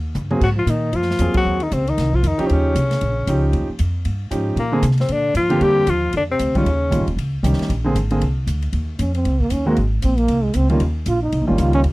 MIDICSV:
0, 0, Header, 1, 7, 480
1, 0, Start_track
1, 0, Tempo, 259965
1, 751, Time_signature, 4, 2, 24, 8
1, 22024, End_track
2, 0, Start_track
2, 0, Title_t, "Tenor saxophone"
2, 0, Program_c, 0, 66
2, 803, Note_on_c, 0, 66, 100
2, 919, Note_off_c, 0, 66, 0
2, 1088, Note_on_c, 0, 65, 86
2, 1294, Note_on_c, 0, 63, 91
2, 1321, Note_off_c, 0, 65, 0
2, 1778, Note_on_c, 0, 65, 105
2, 1806, Note_off_c, 0, 63, 0
2, 2510, Note_off_c, 0, 65, 0
2, 2539, Note_on_c, 0, 66, 105
2, 3012, Note_on_c, 0, 63, 78
2, 3040, Note_off_c, 0, 66, 0
2, 3197, Note_on_c, 0, 60, 89
2, 3225, Note_off_c, 0, 63, 0
2, 3496, Note_on_c, 0, 63, 83
2, 3524, Note_off_c, 0, 60, 0
2, 3980, Note_on_c, 0, 65, 74
2, 4008, Note_off_c, 0, 63, 0
2, 4199, Note_on_c, 0, 63, 83
2, 4226, Note_off_c, 0, 65, 0
2, 4555, Note_on_c, 0, 60, 50
2, 4583, Note_off_c, 0, 63, 0
2, 4680, Note_on_c, 0, 61, 82
2, 4708, Note_off_c, 0, 60, 0
2, 6562, Note_off_c, 0, 61, 0
2, 8485, Note_on_c, 0, 58, 92
2, 8912, Note_off_c, 0, 58, 0
2, 9249, Note_on_c, 0, 60, 84
2, 9456, Note_on_c, 0, 62, 101
2, 9483, Note_off_c, 0, 60, 0
2, 9903, Note_off_c, 0, 62, 0
2, 9914, Note_on_c, 0, 65, 98
2, 10400, Note_on_c, 0, 67, 115
2, 10428, Note_off_c, 0, 65, 0
2, 10893, Note_on_c, 0, 65, 101
2, 10921, Note_off_c, 0, 67, 0
2, 11349, Note_off_c, 0, 65, 0
2, 11399, Note_on_c, 0, 62, 98
2, 11509, Note_off_c, 0, 62, 0
2, 11662, Note_on_c, 0, 60, 85
2, 12145, Note_on_c, 0, 61, 88
2, 12172, Note_off_c, 0, 60, 0
2, 13076, Note_off_c, 0, 61, 0
2, 22024, End_track
3, 0, Start_track
3, 0, Title_t, "Grand piano"
3, 0, Program_c, 1, 0
3, 565, Note_on_c, 1, 54, 77
3, 567, Note_on_c, 1, 58, 70
3, 578, Note_on_c, 1, 68, 78
3, 585, Note_on_c, 1, 60, 71
3, 738, Note_off_c, 1, 54, 0
3, 739, Note_off_c, 1, 58, 0
3, 744, Note_off_c, 1, 68, 0
3, 748, Note_off_c, 1, 60, 0
3, 2207, Note_on_c, 1, 54, 58
3, 2222, Note_on_c, 1, 58, 52
3, 2228, Note_on_c, 1, 60, 54
3, 2243, Note_on_c, 1, 68, 63
3, 2908, Note_off_c, 1, 54, 0
3, 2916, Note_off_c, 1, 58, 0
3, 2918, Note_off_c, 1, 60, 0
3, 2926, Note_off_c, 1, 68, 0
3, 4398, Note_on_c, 1, 53, 73
3, 4399, Note_on_c, 1, 61, 68
3, 4411, Note_on_c, 1, 63, 67
3, 4422, Note_on_c, 1, 67, 88
3, 5038, Note_off_c, 1, 53, 0
3, 5039, Note_off_c, 1, 61, 0
3, 5045, Note_off_c, 1, 63, 0
3, 5050, Note_off_c, 1, 67, 0
3, 6063, Note_on_c, 1, 53, 69
3, 6070, Note_on_c, 1, 61, 59
3, 6074, Note_on_c, 1, 63, 59
3, 6089, Note_on_c, 1, 67, 72
3, 6759, Note_off_c, 1, 53, 0
3, 6762, Note_off_c, 1, 61, 0
3, 6764, Note_off_c, 1, 63, 0
3, 6771, Note_off_c, 1, 67, 0
3, 7951, Note_on_c, 1, 53, 60
3, 7958, Note_on_c, 1, 61, 53
3, 7961, Note_on_c, 1, 63, 57
3, 7965, Note_on_c, 1, 67, 67
3, 8438, Note_off_c, 1, 53, 0
3, 8441, Note_off_c, 1, 61, 0
3, 8442, Note_off_c, 1, 63, 0
3, 8444, Note_off_c, 1, 67, 0
3, 8712, Note_on_c, 1, 50, 75
3, 8717, Note_on_c, 1, 58, 73
3, 8725, Note_on_c, 1, 60, 78
3, 8735, Note_on_c, 1, 68, 85
3, 8897, Note_off_c, 1, 50, 0
3, 8899, Note_off_c, 1, 58, 0
3, 8903, Note_off_c, 1, 60, 0
3, 8908, Note_off_c, 1, 68, 0
3, 10145, Note_on_c, 1, 50, 77
3, 10159, Note_on_c, 1, 58, 73
3, 10164, Note_on_c, 1, 60, 66
3, 10164, Note_on_c, 1, 67, 94
3, 10794, Note_off_c, 1, 50, 0
3, 10801, Note_off_c, 1, 58, 0
3, 10804, Note_off_c, 1, 60, 0
3, 10804, Note_off_c, 1, 67, 0
3, 12094, Note_on_c, 1, 51, 73
3, 12101, Note_on_c, 1, 55, 75
3, 12103, Note_on_c, 1, 61, 69
3, 12120, Note_on_c, 1, 65, 82
3, 12268, Note_off_c, 1, 51, 0
3, 12272, Note_off_c, 1, 55, 0
3, 12273, Note_off_c, 1, 61, 0
3, 12281, Note_off_c, 1, 65, 0
3, 12747, Note_on_c, 1, 51, 63
3, 12762, Note_on_c, 1, 55, 53
3, 12764, Note_on_c, 1, 61, 61
3, 12779, Note_on_c, 1, 65, 71
3, 13010, Note_off_c, 1, 51, 0
3, 13018, Note_off_c, 1, 55, 0
3, 13019, Note_off_c, 1, 61, 0
3, 13026, Note_off_c, 1, 65, 0
3, 13722, Note_on_c, 1, 51, 68
3, 13724, Note_on_c, 1, 55, 55
3, 13728, Note_on_c, 1, 61, 56
3, 13744, Note_on_c, 1, 67, 71
3, 14203, Note_off_c, 1, 51, 0
3, 14204, Note_off_c, 1, 55, 0
3, 14206, Note_off_c, 1, 61, 0
3, 14214, Note_off_c, 1, 67, 0
3, 14482, Note_on_c, 1, 50, 73
3, 14501, Note_on_c, 1, 60, 73
3, 14502, Note_on_c, 1, 58, 69
3, 14513, Note_on_c, 1, 68, 82
3, 14662, Note_off_c, 1, 50, 0
3, 14672, Note_off_c, 1, 58, 0
3, 14672, Note_off_c, 1, 60, 0
3, 14677, Note_off_c, 1, 68, 0
3, 14973, Note_on_c, 1, 50, 66
3, 14979, Note_on_c, 1, 58, 67
3, 14981, Note_on_c, 1, 60, 61
3, 14989, Note_on_c, 1, 68, 72
3, 15147, Note_off_c, 1, 50, 0
3, 15150, Note_off_c, 1, 58, 0
3, 15151, Note_off_c, 1, 60, 0
3, 15156, Note_off_c, 1, 68, 0
3, 17833, Note_on_c, 1, 51, 75
3, 17834, Note_on_c, 1, 56, 70
3, 17839, Note_on_c, 1, 58, 66
3, 17842, Note_on_c, 1, 60, 58
3, 17853, Note_on_c, 1, 66, 82
3, 18016, Note_off_c, 1, 51, 0
3, 18017, Note_off_c, 1, 56, 0
3, 18019, Note_off_c, 1, 58, 0
3, 18021, Note_off_c, 1, 60, 0
3, 18026, Note_off_c, 1, 66, 0
3, 19748, Note_on_c, 1, 51, 74
3, 19754, Note_on_c, 1, 55, 68
3, 19763, Note_on_c, 1, 58, 68
3, 19768, Note_on_c, 1, 61, 65
3, 19774, Note_on_c, 1, 65, 75
3, 19932, Note_off_c, 1, 51, 0
3, 19935, Note_off_c, 1, 55, 0
3, 19940, Note_off_c, 1, 58, 0
3, 19942, Note_off_c, 1, 61, 0
3, 19945, Note_off_c, 1, 65, 0
3, 21178, Note_on_c, 1, 51, 65
3, 21184, Note_on_c, 1, 55, 63
3, 21191, Note_on_c, 1, 58, 58
3, 21191, Note_on_c, 1, 65, 78
3, 21192, Note_on_c, 1, 61, 60
3, 21825, Note_off_c, 1, 51, 0
3, 21828, Note_off_c, 1, 55, 0
3, 21831, Note_off_c, 1, 58, 0
3, 21831, Note_off_c, 1, 65, 0
3, 21832, Note_off_c, 1, 61, 0
3, 22024, End_track
4, 0, Start_track
4, 0, Title_t, "Trombone"
4, 0, Program_c, 2, 57
4, 736, Note_on_c, 2, 54, 79
4, 867, Note_off_c, 2, 54, 0
4, 1015, Note_on_c, 2, 53, 77
4, 1208, Note_on_c, 2, 51, 78
4, 1236, Note_off_c, 2, 53, 0
4, 1707, Note_on_c, 2, 53, 86
4, 1735, Note_off_c, 2, 51, 0
4, 2461, Note_off_c, 2, 53, 0
4, 2472, Note_on_c, 2, 54, 78
4, 2980, Note_on_c, 2, 51, 66
4, 3007, Note_off_c, 2, 54, 0
4, 3156, Note_on_c, 2, 48, 68
4, 3184, Note_off_c, 2, 51, 0
4, 3466, Note_on_c, 2, 51, 74
4, 3494, Note_off_c, 2, 48, 0
4, 3933, Note_on_c, 2, 53, 70
4, 3961, Note_off_c, 2, 51, 0
4, 4153, Note_on_c, 2, 51, 75
4, 4180, Note_off_c, 2, 53, 0
4, 4503, Note_on_c, 2, 48, 49
4, 4530, Note_off_c, 2, 51, 0
4, 4607, Note_on_c, 2, 49, 63
4, 4634, Note_off_c, 2, 48, 0
4, 6525, Note_off_c, 2, 49, 0
4, 8411, Note_on_c, 2, 46, 66
4, 8873, Note_off_c, 2, 46, 0
4, 9222, Note_on_c, 2, 48, 57
4, 9414, Note_on_c, 2, 50, 75
4, 9442, Note_off_c, 2, 48, 0
4, 9889, Note_off_c, 2, 50, 0
4, 9901, Note_on_c, 2, 53, 75
4, 10363, Note_on_c, 2, 55, 84
4, 10391, Note_off_c, 2, 53, 0
4, 10875, Note_on_c, 2, 53, 79
4, 10902, Note_off_c, 2, 55, 0
4, 11340, Note_off_c, 2, 53, 0
4, 11373, Note_on_c, 2, 50, 75
4, 11490, Note_off_c, 2, 50, 0
4, 11645, Note_on_c, 2, 48, 65
4, 12130, Note_on_c, 2, 49, 75
4, 12158, Note_off_c, 2, 48, 0
4, 13069, Note_off_c, 2, 49, 0
4, 16612, Note_on_c, 2, 61, 70
4, 16871, Note_off_c, 2, 61, 0
4, 16895, Note_on_c, 2, 60, 80
4, 17380, Note_on_c, 2, 58, 88
4, 17408, Note_off_c, 2, 60, 0
4, 17596, Note_on_c, 2, 61, 73
4, 17624, Note_off_c, 2, 58, 0
4, 17862, Note_off_c, 2, 61, 0
4, 17877, Note_on_c, 2, 58, 81
4, 18045, Note_off_c, 2, 58, 0
4, 18534, Note_on_c, 2, 60, 81
4, 18802, Note_on_c, 2, 58, 92
4, 18829, Note_off_c, 2, 60, 0
4, 19272, Note_on_c, 2, 56, 81
4, 19300, Note_off_c, 2, 58, 0
4, 19499, Note_on_c, 2, 60, 100
4, 19527, Note_off_c, 2, 56, 0
4, 19762, Note_off_c, 2, 60, 0
4, 19773, Note_on_c, 2, 58, 78
4, 19951, Note_off_c, 2, 58, 0
4, 20472, Note_on_c, 2, 65, 98
4, 20719, Note_off_c, 2, 65, 0
4, 20734, Note_on_c, 2, 63, 81
4, 21173, Note_off_c, 2, 63, 0
4, 21202, Note_on_c, 2, 61, 84
4, 21406, Note_on_c, 2, 65, 97
4, 21433, Note_off_c, 2, 61, 0
4, 21679, Note_off_c, 2, 65, 0
4, 21690, Note_on_c, 2, 61, 106
4, 21804, Note_off_c, 2, 61, 0
4, 22024, End_track
5, 0, Start_track
5, 0, Title_t, "Upright bass"
5, 0, Program_c, 3, 32
5, 0, Note_on_c, 3, 39, 77
5, 263, Note_off_c, 3, 39, 0
5, 280, Note_on_c, 3, 43, 82
5, 742, Note_off_c, 3, 43, 0
5, 754, Note_on_c, 3, 44, 81
5, 1212, Note_off_c, 3, 44, 0
5, 1223, Note_on_c, 3, 46, 88
5, 1694, Note_off_c, 3, 46, 0
5, 1712, Note_on_c, 3, 42, 80
5, 2179, Note_off_c, 3, 42, 0
5, 2199, Note_on_c, 3, 41, 85
5, 2460, Note_off_c, 3, 41, 0
5, 2677, Note_on_c, 3, 39, 79
5, 3143, Note_off_c, 3, 39, 0
5, 3167, Note_on_c, 3, 37, 95
5, 3628, Note_off_c, 3, 37, 0
5, 3644, Note_on_c, 3, 36, 78
5, 4107, Note_off_c, 3, 36, 0
5, 4117, Note_on_c, 3, 41, 90
5, 4381, Note_off_c, 3, 41, 0
5, 4616, Note_on_c, 3, 39, 87
5, 5066, Note_off_c, 3, 39, 0
5, 5077, Note_on_c, 3, 36, 83
5, 5544, Note_off_c, 3, 36, 0
5, 5565, Note_on_c, 3, 34, 83
5, 6029, Note_off_c, 3, 34, 0
5, 6042, Note_on_c, 3, 37, 86
5, 6507, Note_off_c, 3, 37, 0
5, 6523, Note_on_c, 3, 39, 89
5, 6785, Note_off_c, 3, 39, 0
5, 7005, Note_on_c, 3, 41, 92
5, 7469, Note_off_c, 3, 41, 0
5, 7481, Note_on_c, 3, 43, 75
5, 7948, Note_off_c, 3, 43, 0
5, 7957, Note_on_c, 3, 44, 82
5, 8409, Note_off_c, 3, 44, 0
5, 8421, Note_on_c, 3, 46, 84
5, 8897, Note_off_c, 3, 46, 0
5, 8908, Note_on_c, 3, 48, 93
5, 9382, Note_off_c, 3, 48, 0
5, 9394, Note_on_c, 3, 46, 68
5, 9855, Note_off_c, 3, 46, 0
5, 9866, Note_on_c, 3, 43, 89
5, 10341, Note_off_c, 3, 43, 0
5, 10350, Note_on_c, 3, 41, 88
5, 10823, Note_off_c, 3, 41, 0
5, 10836, Note_on_c, 3, 39, 90
5, 11306, Note_off_c, 3, 39, 0
5, 11328, Note_on_c, 3, 41, 68
5, 11792, Note_off_c, 3, 41, 0
5, 11807, Note_on_c, 3, 38, 85
5, 12266, Note_off_c, 3, 38, 0
5, 12277, Note_on_c, 3, 39, 82
5, 12742, Note_off_c, 3, 39, 0
5, 12753, Note_on_c, 3, 34, 85
5, 12913, Note_off_c, 3, 34, 0
5, 12913, Note_on_c, 3, 31, 52
5, 13047, Note_off_c, 3, 31, 0
5, 13058, Note_on_c, 3, 27, 67
5, 13219, Note_off_c, 3, 27, 0
5, 13231, Note_on_c, 3, 37, 74
5, 13703, Note_off_c, 3, 37, 0
5, 13717, Note_on_c, 3, 36, 90
5, 13983, Note_off_c, 3, 36, 0
5, 14202, Note_on_c, 3, 34, 80
5, 14669, Note_off_c, 3, 34, 0
5, 14682, Note_on_c, 3, 32, 88
5, 15148, Note_off_c, 3, 32, 0
5, 15165, Note_on_c, 3, 36, 73
5, 15624, Note_off_c, 3, 36, 0
5, 15635, Note_on_c, 3, 38, 81
5, 16100, Note_off_c, 3, 38, 0
5, 16111, Note_on_c, 3, 39, 76
5, 16583, Note_off_c, 3, 39, 0
5, 16598, Note_on_c, 3, 41, 88
5, 17066, Note_off_c, 3, 41, 0
5, 17082, Note_on_c, 3, 37, 74
5, 17548, Note_off_c, 3, 37, 0
5, 17555, Note_on_c, 3, 39, 86
5, 18024, Note_off_c, 3, 39, 0
5, 18052, Note_on_c, 3, 32, 77
5, 18512, Note_off_c, 3, 32, 0
5, 18534, Note_on_c, 3, 34, 83
5, 18976, Note_off_c, 3, 34, 0
5, 18987, Note_on_c, 3, 36, 76
5, 19459, Note_off_c, 3, 36, 0
5, 19471, Note_on_c, 3, 37, 88
5, 19930, Note_off_c, 3, 37, 0
5, 19942, Note_on_c, 3, 39, 86
5, 20415, Note_off_c, 3, 39, 0
5, 20424, Note_on_c, 3, 34, 94
5, 20896, Note_off_c, 3, 34, 0
5, 20912, Note_on_c, 3, 36, 73
5, 21066, Note_off_c, 3, 36, 0
5, 21066, Note_on_c, 3, 34, 57
5, 21217, Note_off_c, 3, 34, 0
5, 21228, Note_on_c, 3, 31, 61
5, 21381, Note_off_c, 3, 31, 0
5, 21391, Note_on_c, 3, 37, 86
5, 21850, Note_off_c, 3, 37, 0
5, 21861, Note_on_c, 3, 39, 77
5, 22024, Note_off_c, 3, 39, 0
5, 22024, End_track
6, 0, Start_track
6, 0, Title_t, "Muted upright bass strokes"
6, 2486, Note_on_c, 9, 29, 41
6, 2670, Note_off_c, 9, 29, 0
6, 4415, Note_on_c, 9, 29, 41
6, 4600, Note_off_c, 9, 29, 0
6, 6809, Note_on_c, 9, 29, 43
6, 6994, Note_off_c, 9, 29, 0
6, 14016, Note_on_c, 9, 29, 40
6, 14201, Note_off_c, 9, 29, 0
6, 22024, End_track
7, 0, Start_track
7, 0, Title_t, "Drums"
7, 268, Note_on_c, 9, 44, 58
7, 275, Note_on_c, 9, 47, 49
7, 453, Note_off_c, 9, 44, 0
7, 460, Note_off_c, 9, 47, 0
7, 565, Note_on_c, 9, 47, 56
7, 750, Note_off_c, 9, 47, 0
7, 758, Note_on_c, 9, 36, 61
7, 761, Note_on_c, 9, 49, 66
7, 943, Note_off_c, 9, 36, 0
7, 946, Note_off_c, 9, 49, 0
7, 1239, Note_on_c, 9, 44, 57
7, 1239, Note_on_c, 9, 51, 66
7, 1423, Note_off_c, 9, 44, 0
7, 1423, Note_off_c, 9, 51, 0
7, 1712, Note_on_c, 9, 51, 53
7, 1885, Note_on_c, 9, 38, 26
7, 1896, Note_off_c, 9, 51, 0
7, 2040, Note_off_c, 9, 38, 0
7, 2040, Note_on_c, 9, 38, 42
7, 2190, Note_on_c, 9, 44, 65
7, 2190, Note_on_c, 9, 51, 65
7, 2225, Note_off_c, 9, 38, 0
7, 2374, Note_off_c, 9, 44, 0
7, 2374, Note_off_c, 9, 51, 0
7, 2474, Note_on_c, 9, 51, 62
7, 2485, Note_on_c, 9, 36, 87
7, 2659, Note_off_c, 9, 51, 0
7, 2670, Note_off_c, 9, 36, 0
7, 2954, Note_on_c, 9, 51, 45
7, 3138, Note_off_c, 9, 51, 0
7, 3166, Note_on_c, 9, 44, 62
7, 3166, Note_on_c, 9, 51, 62
7, 3350, Note_off_c, 9, 44, 0
7, 3350, Note_off_c, 9, 51, 0
7, 3459, Note_on_c, 9, 51, 45
7, 3643, Note_off_c, 9, 51, 0
7, 3651, Note_on_c, 9, 51, 65
7, 3658, Note_on_c, 9, 38, 37
7, 3836, Note_off_c, 9, 51, 0
7, 3843, Note_off_c, 9, 38, 0
7, 3937, Note_on_c, 9, 36, 51
7, 4121, Note_off_c, 9, 36, 0
7, 4126, Note_on_c, 9, 44, 61
7, 4126, Note_on_c, 9, 51, 68
7, 4311, Note_off_c, 9, 44, 0
7, 4311, Note_off_c, 9, 51, 0
7, 4405, Note_on_c, 9, 51, 48
7, 4590, Note_off_c, 9, 51, 0
7, 4603, Note_on_c, 9, 51, 56
7, 4788, Note_off_c, 9, 51, 0
7, 5086, Note_on_c, 9, 44, 66
7, 5086, Note_on_c, 9, 51, 67
7, 5270, Note_off_c, 9, 44, 0
7, 5270, Note_off_c, 9, 51, 0
7, 5368, Note_on_c, 9, 51, 45
7, 5375, Note_on_c, 9, 38, 36
7, 5553, Note_off_c, 9, 51, 0
7, 5557, Note_on_c, 9, 51, 61
7, 5560, Note_off_c, 9, 38, 0
7, 5741, Note_off_c, 9, 51, 0
7, 6041, Note_on_c, 9, 44, 60
7, 6041, Note_on_c, 9, 51, 69
7, 6226, Note_off_c, 9, 44, 0
7, 6226, Note_off_c, 9, 51, 0
7, 6517, Note_on_c, 9, 51, 51
7, 6702, Note_off_c, 9, 51, 0
7, 6992, Note_on_c, 9, 44, 57
7, 6992, Note_on_c, 9, 51, 62
7, 7176, Note_off_c, 9, 44, 0
7, 7176, Note_off_c, 9, 51, 0
7, 7474, Note_on_c, 9, 51, 58
7, 7659, Note_off_c, 9, 51, 0
7, 7962, Note_on_c, 9, 44, 51
7, 7962, Note_on_c, 9, 51, 60
7, 8146, Note_off_c, 9, 44, 0
7, 8146, Note_off_c, 9, 51, 0
7, 8436, Note_on_c, 9, 51, 52
7, 8621, Note_off_c, 9, 51, 0
7, 8909, Note_on_c, 9, 44, 71
7, 8909, Note_on_c, 9, 51, 67
7, 9071, Note_on_c, 9, 38, 26
7, 9094, Note_off_c, 9, 44, 0
7, 9094, Note_off_c, 9, 51, 0
7, 9185, Note_on_c, 9, 51, 43
7, 9235, Note_off_c, 9, 38, 0
7, 9235, Note_on_c, 9, 38, 42
7, 9370, Note_off_c, 9, 51, 0
7, 9387, Note_on_c, 9, 51, 68
7, 9420, Note_off_c, 9, 38, 0
7, 9572, Note_off_c, 9, 51, 0
7, 9872, Note_on_c, 9, 44, 52
7, 9872, Note_on_c, 9, 51, 70
7, 10056, Note_off_c, 9, 44, 0
7, 10056, Note_off_c, 9, 51, 0
7, 10153, Note_on_c, 9, 51, 44
7, 10337, Note_off_c, 9, 51, 0
7, 10354, Note_on_c, 9, 51, 53
7, 10538, Note_off_c, 9, 51, 0
7, 10831, Note_on_c, 9, 44, 60
7, 10831, Note_on_c, 9, 51, 72
7, 11016, Note_off_c, 9, 44, 0
7, 11016, Note_off_c, 9, 51, 0
7, 11309, Note_on_c, 9, 51, 63
7, 11494, Note_off_c, 9, 51, 0
7, 11802, Note_on_c, 9, 44, 62
7, 11802, Note_on_c, 9, 51, 75
7, 11987, Note_off_c, 9, 44, 0
7, 11987, Note_off_c, 9, 51, 0
7, 12091, Note_on_c, 9, 51, 45
7, 12094, Note_on_c, 9, 36, 57
7, 12276, Note_off_c, 9, 51, 0
7, 12279, Note_off_c, 9, 36, 0
7, 12299, Note_on_c, 9, 51, 59
7, 12483, Note_off_c, 9, 51, 0
7, 12777, Note_on_c, 9, 44, 55
7, 12777, Note_on_c, 9, 51, 65
7, 12962, Note_off_c, 9, 44, 0
7, 12962, Note_off_c, 9, 51, 0
7, 13063, Note_on_c, 9, 51, 48
7, 13247, Note_off_c, 9, 51, 0
7, 13264, Note_on_c, 9, 51, 60
7, 13449, Note_off_c, 9, 51, 0
7, 13738, Note_on_c, 9, 44, 69
7, 13738, Note_on_c, 9, 51, 76
7, 13905, Note_on_c, 9, 38, 30
7, 13923, Note_off_c, 9, 44, 0
7, 13923, Note_off_c, 9, 51, 0
7, 14013, Note_on_c, 9, 51, 43
7, 14059, Note_off_c, 9, 38, 0
7, 14059, Note_on_c, 9, 38, 43
7, 14198, Note_off_c, 9, 51, 0
7, 14213, Note_on_c, 9, 51, 58
7, 14244, Note_off_c, 9, 38, 0
7, 14398, Note_off_c, 9, 51, 0
7, 14688, Note_on_c, 9, 44, 59
7, 14688, Note_on_c, 9, 51, 66
7, 14873, Note_off_c, 9, 44, 0
7, 14873, Note_off_c, 9, 51, 0
7, 14964, Note_on_c, 9, 51, 46
7, 15149, Note_off_c, 9, 51, 0
7, 15165, Note_on_c, 9, 51, 61
7, 15350, Note_off_c, 9, 51, 0
7, 15645, Note_on_c, 9, 44, 68
7, 15645, Note_on_c, 9, 51, 67
7, 15829, Note_off_c, 9, 44, 0
7, 15829, Note_off_c, 9, 51, 0
7, 15921, Note_on_c, 9, 51, 43
7, 16105, Note_off_c, 9, 51, 0
7, 16113, Note_on_c, 9, 51, 54
7, 16297, Note_off_c, 9, 51, 0
7, 16597, Note_on_c, 9, 44, 59
7, 16597, Note_on_c, 9, 51, 69
7, 16782, Note_off_c, 9, 44, 0
7, 16782, Note_off_c, 9, 51, 0
7, 16884, Note_on_c, 9, 51, 46
7, 17069, Note_off_c, 9, 51, 0
7, 17078, Note_on_c, 9, 51, 61
7, 17263, Note_off_c, 9, 51, 0
7, 17361, Note_on_c, 9, 36, 49
7, 17542, Note_on_c, 9, 44, 61
7, 17542, Note_on_c, 9, 51, 68
7, 17545, Note_off_c, 9, 36, 0
7, 17726, Note_off_c, 9, 44, 0
7, 17726, Note_off_c, 9, 51, 0
7, 18028, Note_on_c, 9, 51, 53
7, 18212, Note_off_c, 9, 51, 0
7, 18504, Note_on_c, 9, 44, 60
7, 18504, Note_on_c, 9, 51, 73
7, 18688, Note_off_c, 9, 44, 0
7, 18688, Note_off_c, 9, 51, 0
7, 18789, Note_on_c, 9, 51, 46
7, 18974, Note_off_c, 9, 51, 0
7, 18984, Note_on_c, 9, 51, 68
7, 19168, Note_off_c, 9, 51, 0
7, 19452, Note_on_c, 9, 44, 57
7, 19452, Note_on_c, 9, 51, 65
7, 19637, Note_off_c, 9, 44, 0
7, 19637, Note_off_c, 9, 51, 0
7, 19746, Note_on_c, 9, 51, 42
7, 19931, Note_off_c, 9, 51, 0
7, 19937, Note_on_c, 9, 51, 57
7, 20122, Note_off_c, 9, 51, 0
7, 20415, Note_on_c, 9, 44, 64
7, 20415, Note_on_c, 9, 51, 68
7, 20599, Note_off_c, 9, 44, 0
7, 20599, Note_off_c, 9, 51, 0
7, 20907, Note_on_c, 9, 51, 60
7, 21092, Note_off_c, 9, 51, 0
7, 21381, Note_on_c, 9, 44, 57
7, 21381, Note_on_c, 9, 51, 75
7, 21566, Note_off_c, 9, 44, 0
7, 21566, Note_off_c, 9, 51, 0
7, 21659, Note_on_c, 9, 51, 45
7, 21843, Note_off_c, 9, 51, 0
7, 21856, Note_on_c, 9, 51, 49
7, 22024, Note_off_c, 9, 51, 0
7, 22024, End_track
0, 0, End_of_file